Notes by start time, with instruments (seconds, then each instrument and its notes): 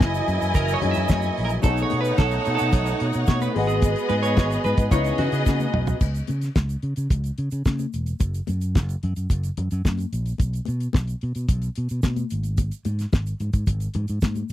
Already playing: french horn section E3 F#3 A#3, grand piano F#3 C#4 D#4 E4 G#4 A#4, string section E4 D#5 G#5
0.01 fingered electric bass F#1, kick, snare, shaker
0.14 closed hi-hat, shaker
0.28 fingered electric bass F#2, closed hi-hat, low conga, shaker
0.42 fingered electric bass F#2, closed hi-hat, shaker
0.54 fingered electric bass F#1, clean electric guitar A#4, kick, closed hi-hat, low conga, shaker
0.68 closed hi-hat, shaker
0.74 clean electric guitar C#5
0.81 fingered electric bass F#2, grand piano F#3 C#4 D#4 E4 G#4 C#5, closed hi-hat, low conga
0.91 clean electric guitar E5, shaker
0.96 fingered electric bass F#2, closed hi-hat
1.08 fingered electric bass F#2, clean electric guitar C#5, kick, snare, high conga, shaker
1.22 closed hi-hat, high conga, shaker
1.37 fingered electric bass A#1, open hi-hat
1.45 clean electric guitar A#4
1.49 closed hi-hat, shaker
1.62 fingered electric bass B1, grand piano B2 B3 D#4 G#4 A4 C#5, french horn section A3 B3 D#4, string section D#4 C#5 F#5, clean electric guitar A4, kick, closed hi-hat, muted conga, shaker
1.77 closed hi-hat, shaker
1.82 clean electric guitar C#5
1.90 fingered electric bass B2, closed hi-hat, muted conga
2.01 clean electric guitar B4, closed hi-hat, shaker
2.18 fingered electric bass B1, clean electric guitar A4, kick, snare, high conga, shaker
2.31 closed hi-hat, shaker
2.45 fingered electric bass B2, closed hi-hat, shaker
2.55 clean electric guitar A4, closed hi-hat, shaker
2.61 fingered electric bass B2
2.72 fingered electric bass B1, kick, closed hi-hat, low conga, shaker
2.86 closed hi-hat, shaker
3.00 fingered electric bass B2, closed hi-hat
3.13 fingered electric bass B2, closed hi-hat, shaker
3.27 fingered electric bass B2, clean electric guitar C#5, kick, snare, high conga, shaker
3.41 clean electric guitar B4, closed hi-hat, high conga, shaker
3.55 fingered electric bass G#1, grand piano G#3 G#4 B4 D#5 F#5, french horn section G#3 F#4 B4, string section B3 G#4 D#5, open hi-hat
3.67 clean electric guitar G#4, closed hi-hat, shaker
3.82 kick, closed hi-hat, muted conga, shaker
3.96 closed hi-hat, shaker
4.09 fingered electric bass G#2, clean electric guitar B4, closed hi-hat, muted conga
4.23 clean electric guitar C#5, closed hi-hat, shaker
4.37 fingered electric bass G#1, kick, snare, high conga, shaker
4.50 closed hi-hat, shaker
4.64 fingered electric bass G#2, clean electric guitar B4, closed hi-hat, low conga, shaker
4.77 fingered electric bass G#2, kick, closed hi-hat, shaker
4.91 fingered electric bass C#2, grand piano C#3 C#4 D#4 E4 B4, french horn section C#3 E3 B3 D#5, string section B3 G#4 D#5, clean electric guitar C#5, kick, closed hi-hat, muted conga, low conga, shaker
5.04 closed hi-hat, shaker
5.18 fingered electric bass C#3, clean electric guitar F#4, closed hi-hat, low conga
5.32 fingered electric bass C#3, closed hi-hat, shaker
5.46 fingered electric bass C#3, kick, snare, high conga, shaker
5.60 high conga, shaker
5.74 fingered electric bass B1, mid tom
5.87 floor tom, shaker
6.01 fingered electric bass C#2, kick, crash, muted conga, shaker
6.15 closed hi-hat, shaker
6.27 fingered electric bass C#3, closed hi-hat, muted conga, shaker
6.41 snare, closed hi-hat, shaker
6.56 fingered electric bass C#2, kick, snare, high conga, shaker
6.69 closed hi-hat, shaker
6.82 fingered electric bass C#3, closed hi-hat
6.96 fingered electric bass C#3, closed hi-hat, shaker
7.10 fingered electric bass C#2, kick, closed hi-hat, low conga, shaker
7.24 closed hi-hat, shaker
7.38 fingered electric bass C#3, closed hi-hat
7.51 fingered electric bass C#3, closed hi-hat, shaker
7.66 fingered electric bass C#3, kick, snare, high conga, shaker
7.79 closed hi-hat, high conga, shaker
7.93 fingered electric bass E1, closed hi-hat, shaker
8.06 closed hi-hat, shaker
8.20 fingered electric bass F#1, kick, closed hi-hat, muted conga, shaker
8.34 closed hi-hat, shaker
8.47 fingered electric bass F#2, closed hi-hat, muted conga, shaker
8.61 closed hi-hat, shaker
8.75 fingered electric bass F#1, kick, snare, high conga, shaker
8.89 closed hi-hat, shaker
9.03 fingered electric bass F#2, closed hi-hat, low conga
9.16 fingered electric bass F#2, closed hi-hat, shaker
9.30 fingered electric bass F#1, kick, closed hi-hat, muted conga, shaker
9.43 closed hi-hat, shaker
9.57 fingered electric bass F#2, closed hi-hat, low conga
9.71 fingered electric bass F#2, closed hi-hat, shaker
9.85 fingered electric bass F#2, kick, snare, high conga, shaker
9.98 closed hi-hat, high conga, shaker
10.13 fingered electric bass A#1, closed hi-hat, shaker
10.26 closed hi-hat, shaker
10.38 fingered electric bass B1, kick, closed hi-hat, muted conga, shaker
10.53 closed hi-hat, shaker
10.65 fingered electric bass B2, closed hi-hat, muted conga, shaker
10.80 closed hi-hat, shaker
10.93 fingered electric bass B1, kick, snare, high conga, shaker
11.07 closed hi-hat, shaker
11.21 fingered electric bass B2, closed hi-hat
11.35 fingered electric bass B2, closed hi-hat, shaker
11.49 fingered electric bass B1, kick, closed hi-hat, low conga, shaker
11.62 closed hi-hat, shaker
11.75 fingered electric bass B2, closed hi-hat
11.89 fingered electric bass B2, closed hi-hat, shaker
12.03 fingered electric bass B2, kick, snare, high conga, shaker
12.16 closed hi-hat, high conga, shaker
12.30 fingered electric bass G#1, closed hi-hat, shaker
12.43 closed hi-hat, shaker
12.57 kick, closed hi-hat, muted conga, shaker
12.71 closed hi-hat, shaker
12.85 fingered electric bass G#2, closed hi-hat, muted conga, shaker
12.99 snare, closed hi-hat, shaker
13.13 fingered electric bass G#1, kick, snare, high conga, shaker
13.27 closed hi-hat, shaker
13.40 fingered electric bass G#2, closed hi-hat, low conga, shaker
13.53 fingered electric bass G#2, kick, closed hi-hat, shaker
13.67 fingered electric bass G#1, kick, closed hi-hat, muted conga, low conga, shaker
13.80 closed hi-hat, shaker
13.94 fingered electric bass G#2, closed hi-hat, low conga
14.08 fingered electric bass G#2, closed hi-hat, shaker
14.21 fingered electric bass G#2, kick, snare, high conga, shaker
14.35 closed hi-hat, high conga, shaker
14.49 shaker